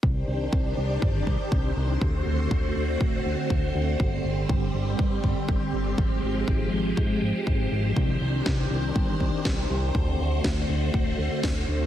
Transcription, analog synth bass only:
X:1
M:4/4
L:1/8
Q:1/4=121
K:Cm
V:1 name="Analog synth bass" clef=bass
C,, C,, C,, C,, G,,, C,, C,, C,, | D,, D,, D,, D,, D,,, D,, D,, D,, | G,,, G,,, G,,, G,,, G,, G,,, G,,, G,,, | A,,, A,,, A,,, A,,, A,, A,,, A,,, A,,, |
C,, C,, C,, C,, G,,, C,, C,, C,, | D,, D,, D,, D,, D,,, D,, D,, D,, |]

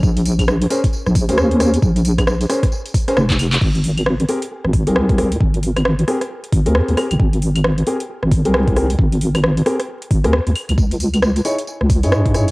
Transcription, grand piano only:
X:1
M:4/4
L:1/16
Q:"Swing 16ths" 1/4=134
K:Ab
V:1 name="Grand piano"
z6 [DABc] z4 [DABc]3 [DABc] z | z6 [DABc] z4 [DABc] z4 | z6 [CGAB] z4 [CGAB]3 [CGAB] z | z6 [CGAB] z4 [CGAB]3 [CGAB] z |
z6 [CGAB] z4 [CGAB]3 [CGAB] z | z6 [CGAB] z4 [CGAB] z4 | z6 [E_FAd] z4 [EFAd]3 [EFAd] z |]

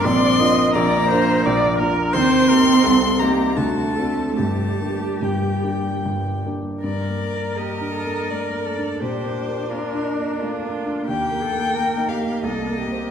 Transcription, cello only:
X:1
M:3/4
L:1/8
Q:1/4=85
K:Gm
V:1 name="Cello"
C2 B,3 z | C3 B, A,2 | A,2 G,3 z | B2 G A B A |
G2 F E F2 | G A B G A G |]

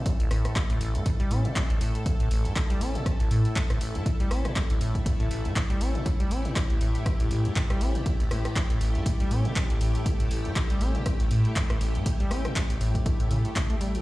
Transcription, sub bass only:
X:1
M:4/4
L:1/8
Q:"Swing 16ths" 1/4=120
K:Amix
V:1 name="Sub bass" clef=bass
z A,,, z A,,, z A,, z A,,, | z A,,, z A,,, z A,, z A,,, | z A,,, z A,,, z A,,, z A,,, | z A,,, z A,,, z A,, z A,,, |
z A,,, z A,,, z A,, z A,,, | z A,,, z A,,, z A,, z A,,, | z A,,, z A,,, z A,, z A,,, |]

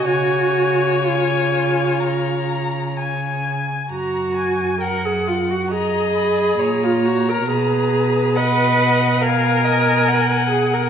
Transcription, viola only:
X:1
M:4/4
L:1/16
Q:1/4=66
K:F#
V:1 name="Viola"
F4 E8 z4 | F4 A G E F G4- G E F A | G4 B4 A6 G A |]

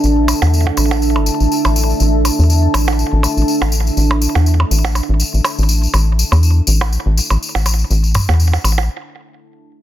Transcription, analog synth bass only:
X:1
M:4/4
L:1/16
Q:"Swing 16ths" 1/4=122
K:Cmix
V:1 name="Analog synth bass" clef=bass
A,,,2 z E,,2 z A,,,3 G,,, z A,,, z A,,,2 z | A,,,2 z E,,2 z A,,,2 z A,,, z A,,, z A,,,2 z | A,,,2 z E,,2 z A,,,2 z A,,, z A,,, z A,,,2 z | A,,,2 z E,,2 z A,,,2 z A,,, z A,,, z A,,,2 z |
A,,,2 z E,,2 z A,,,2 z8 |]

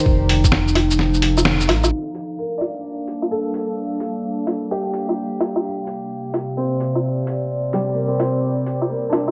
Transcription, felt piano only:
X:1
M:4/4
L:1/16
Q:"Swing 16ths" 1/4=129
K:Gm
V:1 name="Felt piano"
[GBcd]3 z12 z | z4 B d6- d A4- | A8 G8- | G2 z6 C8- |
C2 G, B, C2 C6 B, D D2 |]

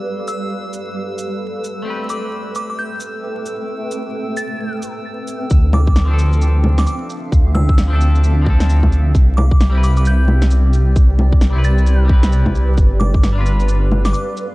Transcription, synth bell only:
X:1
M:4/4
L:1/16
Q:"Swing 16ths" 1/4=132
K:Ddor
V:1 name="Synth bell"
z2 e'4 z8 z2 | z2 d'3 z d' d' g'2 z6 | z6 a'3 z6 z | z2 d'3 z6 d' d' z3 |
z2 e'4 z8 z2 | z2 d'3 z d' d' g'2 z6 | z6 a'3 z6 z | z2 d'3 z6 d' d' z3 |]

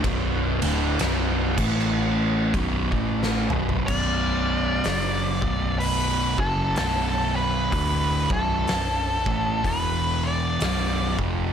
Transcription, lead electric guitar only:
X:1
M:4/4
L:1/8
Q:"Swing" 1/4=62
K:Bm
V:1 name="Lead electric guitar"
z8 | d4 B A A B- | B A3 B d2 z |]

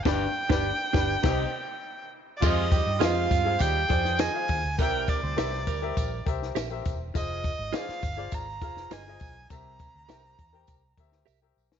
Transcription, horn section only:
X:1
M:4/4
L:1/16
Q:1/4=102
K:Fdor
V:1 name="Horn section"
z16 | [C,A,F]2 [G,EG]2 [C,A,F]4 [G,EG]2 [F,EA]4 z2 | [G,=EB]3 [G,Ec] [G,Ec]2 [G,EB]4 z6 | z16 |
z16 |]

